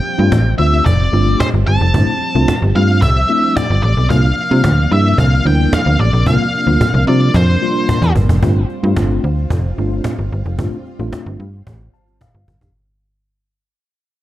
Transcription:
Already playing: F3 G3 C4 G5
0.05 cajon slap
0.18 G2 A3 C4 D4 F4, cajon slap
0.32 A1, cajon bass, cajon slap
0.46 cajon slap
0.58 D2 A3 C4 D4 F4 E5, cajon slap
0.73 cajon slap
0.86 F1 D5, cajon bass
1.00 cajon slap
1.12 G1 A3 C4 D4 F4, cajon slap
1.27 cajon slap
1.40 C5, cajon bass, cajon slap
1.54 G1, cajon slap
1.67 G1 A5
1.81 F1, cajon slap
1.94 G1 A3 C4 D4 E4, cajon bass
2.08 cajon slap
2.21 cajon slap
2.34 C2 A3 C4 D4 F4, cajon slap
2.48 cajon bass, cajon slap
2.62 G1, cajon slap
2.75 G2 A3 C4 D4 F4 F5, cajon slap
2.89 cajon slap
3.02 C2 E5, cajon bass
3.16 cajon slap
3.29 A3 C4 D4 E4, cajon slap
3.43 cajon slap
3.57 D5, cajon bass, cajon slap
3.70 G1, cajon slap
3.83 A1 D5
3.97 B1, cajon slap
4.09 C2 C3 F3 G3 A#3 D4 F4 F5, cajon bass
4.24 cajon slap
4.37 cajon slap
4.51 C3 G3 A#3 D4 F4, cajon slap
4.64 D2, cajon bass, cajon slap
4.78 cajon slap
4.91 G2 G3 A#3 D4 E4 E5, cajon slap
5.05 cajon slap
5.18 C2 F5, cajon bass
5.32 cajon slap
5.45 D2 G3 A#3 D4 E4 G5, cajon slap
5.59 cajon slap
5.73 F5, cajon bass, cajon slap
5.86 D2, cajon slap
6.00 A1 D5
6.13 A#1, cajon slap
6.26 C2 G3 A#3 D4 F4 F5, cajon bass
6.40 cajon slap
6.54 cajon slap
6.67 D2 G3 A#3 D4 F4, cajon slap
6.81 cajon bass, cajon slap
6.94 C2, cajon slap
7.07 C3 G3 A#3 D4 F4 D5, cajon slap
7.34 F2 C5, cajon bass
7.48 cajon slap
7.62 G3 A#3 D4 F4, cajon slap
7.75 cajon slap
7.89 cajon bass, cajon slap
8.02 E2, cajon slap
8.15 G1, cajon bass
8.29 F1, cajon bass
8.42 G1 G3 A3 C4 D4 F4, cajon bass
8.56 cajon slap
8.70 cajon slap
8.83 G2 A3 C4 D4 F4, cajon slap
8.96 G1, cajon bass, cajon slap
9.10 cajon slap
9.24 D2, cajon slap
9.38 cajon slap
9.50 F1, cajon bass
9.64 cajon slap
9.78 G1 A3 C4 D4 F4, cajon slap
9.91 cajon slap
10.04 cajon bass, cajon slap
10.18 G1, cajon slap
10.31 G1, cajon slap
10.45 F1, cajon slap
10.58 G1 A3 C4 D4 F4, cajon bass
10.72 cajon slap
10.86 cajon slap
10.99 A1 A3 C4 D4 F4, cajon slap
11.13 cajon bass, cajon slap
11.26 G1, cajon slap
11.40 G2, cajon slap
11.54 cajon slap
11.67 A1, cajon bass
11.80 cajon slap
11.94 A5, cajon slap
12.08 cajon slap
12.21 F5, cajon bass, cajon slap
12.34 G1, cajon slap
12.48 G1, cajon bass
12.61 F1 D4 G4, cajon bass

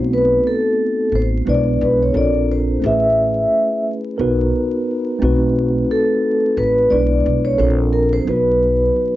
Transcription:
Already playing: B1 A3 B3 C4 D#4 F#4 C5
0.13 B4
0.47 A4
1.12 A1 C5
1.45 B1 G#3 B3 D4 E4 B4 D5
1.81 B1 B4
2.03 C#5
2.13 A#1 C4 D4 F4 A4 A#4 D5
2.52 C5
2.80 A1 A3 C#4 E4
2.85 G#4 B4 E5
4.18 B1 B3 D#4 F#4 A#4 B4
5.18 B1 A3 C4 D#4
5.23 F#4 B4
5.91 A4
6.57 A1 B4
6.90 B1 G#3 B3 D4 E4 B4 D5
7.26 B1
7.45 C#5
7.58 A#1 C4 D4 F4 A4 A#4 C5
7.93 A#4
8.13 C5
8.24 B1 F#3 B3 D#4 B4
8.29 F#4 B4

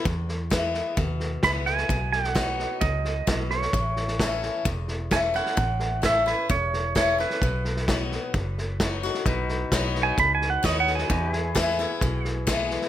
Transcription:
0.05 E2, kick, snare
0.29 snare
0.50 E3 G#3 B3 E4, kick, snare, hi-hat pedal
0.74 snare
0.97 D#2 B2, kick, snare
1.20 snare
1.43 C#2 E3 G#3 B3 E4 B5, kick, snare, hi-hat pedal
1.66 G#5, snare
1.77 snare
1.89 B1 B2, kick, snare
2.13 F#5, snare
2.24 snare
2.35 F#3 B3 D#4 F#4, kick, snare, hi-hat pedal
2.59 snare
2.81 C#2 F#2 D#5, kick, snare
3.05 snare
3.27 B1 B2, kick, snare, hi-hat pedal
3.50 C#5, snare
3.62 snare
3.73 A1 A2, kick, snare
3.96 snare
4.08 snare
4.19 E3 A3 C#4 E4, kick, snare, hi-hat pedal
4.43 snare
4.65 E1 E2, kick, snare
4.88 snare
5.11 E3 A3 C#4 E4 G#5, kick, snare, hi-hat pedal
5.34 C#4 E4 F#5, snare
5.46 snare
5.57 A1 A2, kick, snare
5.80 snare
6.02 E3 A3 C#4 E4 E5, kick, snare, hi-hat pedal
6.26 C#4 E4 B4, snare
6.49 E1 E2 C#5, kick, snare
6.73 snare
6.95 E3 A3 C#4 E4 C#5, kick, snare, hi-hat pedal
7.18 C#4 E4 B4, snare
7.30 snare
7.41 B1 B2, kick, snare
7.65 snare
7.77 snare
7.88 F#3 B3 D#4 F#4, kick, snare, hi-hat pedal
8.12 snare
8.34 F#1 F#2, kick, snare
8.58 snare
8.80 F#3 B3 D#4 F#4, kick, snare, hi-hat pedal
9.03 D#4 F#4, snare
9.14 snare
9.26 B1 B2 D#4 F#4 B4, kick, snare
9.49 snare
9.71 B1 F#3 B3 D#4 F#4, kick, snare, hi-hat pedal
9.95 snare
10.03 G#5
10.18 C#2 F#2 B5, kick, snare
10.35 G#5
10.42 snare
10.50 F#5
10.63 D#2 F#3 B3 D#4 F#4 D#5, kick, snare, hi-hat pedal
10.80 F#5
10.87 snare
10.95 G#5, snare
11.10 E2 D#4 F#4 B4, kick, snare
11.31 E4, snare
11.36 G#4
11.55 E3 G#3 B3 E4, kick, snare, hi-hat pedal
11.79 B3 E4, snare
12.01 B1 B2, kick, snare
12.25 snare
12.47 E3 G#3 B3 E4, kick, snare, hi-hat pedal
12.71 snare
12.82 snare

